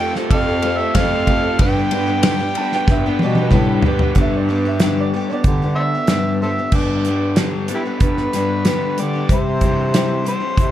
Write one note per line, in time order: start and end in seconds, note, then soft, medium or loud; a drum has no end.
0.00 0.14 F2 medium
0.00 0.13 F3 medium
0.00 0.46 A3 medium
0.00 0.16 C4 soft
0.00 0.16 C4 medium
0.00 0.15 F4 medium
0.00 0.30 F4 medium
0.00 1.56 F4 medium
0.00 0.15 F4 medium
0.00 0.14 G4 medium
0.00 0.30 G4 medium
0.00 4.11 G4 medium
0.00 0.13 A4 medium
0.00 0.30 C5 medium
0.00 0.14 G5 loud
0.00 1.57 A5 medium
0.14 0.48 C4 soft
0.14 0.47 F4 medium
0.14 0.47 G4 medium
0.14 0.46 A4 medium
0.14 snare soft
0.31 0.84 F2 loud
0.31 0.38 A4 medium
0.31 0.37 D5 medium
0.31 0.79 F5 medium
0.31 kick loud
0.31 ride medium
0.47 0.63 C4 soft
0.47 0.64 F4 soft
0.47 0.63 G4 medium
0.47 0.64 A4 medium
0.62 0.79 A3 medium
0.62 0.80 C4 medium
0.62 0.79 F4 medium
0.62 0.77 G4 medium
0.62 0.97 A4 medium
0.62 ride medium
0.78 0.95 C4 soft
0.78 0.95 F4 soft
0.78 0.95 G4 soft
0.78 0.97 E5 medium
0.95 1.48 F2 loud
0.95 1.27 F3 medium
0.95 1.26 A3 medium
0.95 1.27 C4 medium
0.95 1.28 F4 medium
0.95 1.28 G4 medium
0.95 1.10 A4 loud
0.95 1.59 F5 loud
0.95 kick medium
0.95 snare loud
0.95 ride loud
1.12 1.28 C4 medium
1.12 1.29 F4 medium
1.12 1.30 A4 medium
1.26 1.59 A3 medium
1.26 1.60 C4 medium
1.26 1.50 F4 medium
1.26 1.60 F4 medium
1.26 1.50 G4 medium
1.26 1.59 G4 medium
1.26 1.51 C5 medium
1.26 kick medium
1.26 ride medium
1.31 1.43 A4 medium
1.44 1.59 C4 medium
1.44 1.59 F4 medium
1.44 1.58 A4 medium
1.57 1.91 G2 medium
1.57 1.86 G2 loud
1.57 1.91 D3 medium
1.57 1.89 G3 medium
1.57 1.90 B3 medium
1.57 1.82 D4 medium
1.57 1.91 D4 medium
1.57 1.82 G4 medium
1.57 1.92 G4 medium
1.57 1.83 B4 loud
1.57 4.14 D5 medium
1.57 4.13 B5 medium
1.57 kick loud
1.57 ride medium
1.62 1.94 B4 medium
1.62 3.49 G5 loud
1.91 2.50 G2 medium
1.91 2.07 G3 medium
1.91 2.07 B3 medium
1.91 2.86 D4 medium
1.91 2.06 D4 medium
1.91 2.86 G4 medium
1.91 2.05 G4 medium
1.91 2.87 B4 medium
1.91 ride medium
1.95 2.25 B4 medium
2.07 2.22 G3 soft
2.07 2.22 B3 medium
2.07 2.23 D4 medium
2.07 2.23 G4 medium
2.23 2.39 G2 medium
2.23 2.39 D3 medium
2.23 2.39 G3 medium
2.23 2.40 B3 medium
2.23 2.39 D4 medium
2.23 2.38 G4 medium
2.23 snare loud
2.23 ride loud
2.27 2.39 B4 loud
2.39 2.73 G3 soft
2.39 2.72 B3 soft
2.39 2.72 D4 medium
2.39 2.71 G4 medium
2.39 muted overdriven electric guitar stroke medium
2.55 3.04 G3 medium
2.55 2.75 D4 medium
2.55 2.71 A5 medium
2.55 ride medium
2.59 2.73 B3 medium
2.59 2.71 B4 medium
2.72 3.05 G3 soft
2.72 3.05 B3 soft
2.72 3.05 D4 medium
2.72 3.04 G4 medium
2.72 3.04 B4 medium
2.72 2.88 G5 medium
2.72 snare soft
2.87 3.14 G2 loud
2.87 3.04 E5 medium
2.87 kick loud
2.87 snare medium
3.05 3.21 G3 soft
3.05 3.21 B3 medium
3.05 3.21 D4 medium
3.05 3.21 G4 medium
3.05 3.22 B4 medium
3.05 3.20 G5 medium
3.19 3.49 B2 medium
3.19 3.37 G3 medium
3.19 3.37 B3 medium
3.19 3.55 B4 medium
3.19 high tom medium
3.23 3.37 D4 medium
3.23 3.36 G4 medium
3.23 3.37 D5 medium
3.35 3.51 G3 soft
3.35 3.51 B3 medium
3.35 3.51 D4 medium
3.35 3.52 G4 medium
3.35 high tom medium
3.42 3.54 B4 medium
3.51 3.84 G2 medium
3.51 3.80 A2 medium
3.51 3.84 D3 medium
3.51 3.83 G3 medium
3.51 3.84 B3 loud
3.51 3.84 D4 medium
3.51 3.84 G4 loud
3.51 kick medium
3.51 mid tom medium
3.55 3.85 A4 medium
3.55 3.66 B4 medium
3.67 3.84 B3 medium
3.67 3.85 B4 medium
3.71 3.82 D4 medium
3.82 4.13 G2 medium
3.82 4.00 G3 medium
3.82 4.01 B3 medium
3.82 4.08 D4 medium
3.82 4.01 D4 medium
3.82 4.08 G4 medium
3.82 4.00 G4 medium
3.82 3.98 B4 medium
3.82 floor tom medium
3.87 4.17 G4 medium
3.87 4.09 B4 medium
3.99 4.16 D4 soft
3.99 4.17 G4 soft
3.99 4.13 B4 medium
3.99 floor tom medium
4.03 4.15 G3 soft
4.03 4.16 B3 soft
4.15 5.22 G2 loud
4.15 4.48 G2 medium
4.15 4.48 D3 medium
4.15 4.48 G3 medium
4.15 4.48 B3 medium
4.15 4.49 D4 medium
4.15 4.49 G4 medium
4.15 kick medium
4.15 closed hi-hat medium
4.21 4.34 E5 medium
4.36 4.65 D5 medium
4.49 4.64 G3 medium
4.49 4.65 B3 medium
4.49 4.65 D4 medium
4.49 4.64 G4 medium
4.65 4.81 G3 soft
4.65 4.81 B3 soft
4.65 4.81 D4 medium
4.65 4.81 G4 medium
4.65 4.97 E5 medium
4.80 5.13 G2 medium
4.80 5.13 D3 medium
4.80 5.12 G3 medium
4.80 5.13 B3 medium
4.80 5.13 D4 medium
4.80 5.14 G4 medium
4.80 snare loud
4.80 closed hi-hat medium
5.00 5.29 D5 medium
5.14 5.29 G3 medium
5.14 5.29 B3 medium
5.14 5.30 D4 medium
5.14 5.28 G4 medium
5.28 5.45 B3 medium
5.28 5.46 D4 medium
5.28 5.45 G4 medium
5.28 5.31 C#5 medium
5.33 5.45 G3 medium
5.33 5.77 D5 medium
5.44 5.98 D3 medium
5.44 5.61 G3 medium
5.44 5.61 B3 medium
5.44 5.62 D4 medium
5.44 5.61 G4 medium
5.44 kick loud
5.44 closed hi-hat medium
5.62 5.95 G3 soft
5.62 5.94 B3 medium
5.62 5.94 D4 medium
5.62 5.93 G4 medium
5.75 5.82 A4 medium
5.75 5.82 C5 medium
5.75 6.36 E5 loud
5.80 6.09 D5 medium
5.94 6.09 G3 soft
5.94 6.10 B3 soft
5.94 6.10 D4 medium
5.94 6.09 G4 soft
6.07 6.62 G2 medium
6.07 6.41 G2 medium
6.07 6.41 D3 medium
6.07 6.41 G3 medium
6.07 snare loud
6.07 closed hi-hat medium
6.12 6.42 B3 medium
6.12 6.42 D4 medium
6.12 6.42 G4 medium
6.42 6.57 G3 medium
6.42 6.58 B3 medium
6.42 6.58 D4 medium
6.42 6.57 G4 medium
6.42 6.50 A4 medium
6.42 6.50 C5 medium
6.42 6.76 E5 medium
6.58 6.74 G3 soft
6.58 6.74 B3 soft
6.58 6.74 D4 soft
6.58 6.73 G4 soft
6.72 7.56 G2 medium
6.72 7.05 G2 medium
6.72 7.05 D3 medium
6.72 7.04 G3 medium
6.72 7.05 B3 medium
6.72 7.06 D4 medium
6.72 7.06 G4 medium
6.72 7.38 D5 medium
6.72 kick loud
6.72 crash medium
7.05 8.65 D3 medium
7.05 7.36 G3 soft
7.05 7.36 B3 medium
7.05 7.37 D4 medium
7.05 7.37 G4 medium
7.05 closed hi-hat medium
7.36 7.69 G2 medium
7.36 7.69 D3 medium
7.36 7.68 G3 medium
7.36 7.69 B3 medium
7.36 7.69 D4 medium
7.36 7.70 G4 medium
7.36 snare loud
7.36 closed hi-hat medium
7.68 7.85 G3 medium
7.68 7.85 B3 medium
7.68 7.85 D4 medium
7.68 7.84 G4 medium
7.68 closed hi-hat medium
7.75 7.83 E4 medium
7.75 7.81 G4 medium
7.75 9.02 B4 medium
7.85 8.32 G3 soft
7.85 8.33 B3 soft
7.85 8.33 D4 soft
7.85 8.33 G4 medium
7.99 8.28 G2 loud
7.99 9.28 G3 medium
7.99 kick loud
7.99 closed hi-hat medium
8.17 snare soft
8.33 8.87 G2 medium
8.33 8.65 G3 medium
8.33 8.65 B3 medium
8.33 8.65 D4 medium
8.33 8.66 G4 medium
8.33 snare soft
8.33 closed hi-hat medium
8.65 8.97 G2 medium
8.65 8.97 D3 medium
8.65 8.96 G3 medium
8.65 8.98 B3 medium
8.65 8.98 D4 medium
8.65 8.98 G4 loud
8.65 snare loud
8.65 closed hi-hat medium
8.97 9.24 D3 medium
8.97 9.13 G3 soft
8.97 9.14 B3 medium
8.97 9.14 D4 medium
8.97 9.12 G4 medium
8.97 9.31 D5 medium
8.97 closed hi-hat medium
9.13 9.29 G3 soft
9.13 9.30 B3 soft
9.13 9.30 D4 soft
9.13 9.29 G4 soft
9.29 10.35 C3 loud
9.29 9.61 C3 medium
9.29 9.61 G3 medium
9.29 9.62 C4 medium
9.29 9.62 E4 medium
9.29 9.62 G4 medium
9.29 kick loud
9.29 closed hi-hat medium
9.33 10.23 C5 medium
9.61 9.93 E3 medium
9.61 9.93 G3 medium
9.61 9.93 C4 medium
9.61 9.94 E4 medium
9.61 kick medium
9.61 closed hi-hat medium
9.65 9.94 G4 medium
9.94 10.26 C3 medium
9.94 10.57 E3 medium
9.94 10.23 G3 medium
9.94 10.24 C4 medium
9.94 10.25 E4 medium
9.94 10.25 G4 medium
9.94 snare loud
9.94 closed hi-hat medium
10.24 10.41 G3 medium
10.24 10.41 C4 medium
10.24 10.40 E4 medium
10.24 10.39 G4 medium
10.24 10.71 C5 medium
10.24 closed hi-hat soft
10.40 10.71 C4 soft
10.40 10.71 E4 soft
10.40 10.71 G4 medium
10.57 10.71 C3 medium
10.57 10.71 E3 medium
10.57 kick loud
10.57 closed hi-hat medium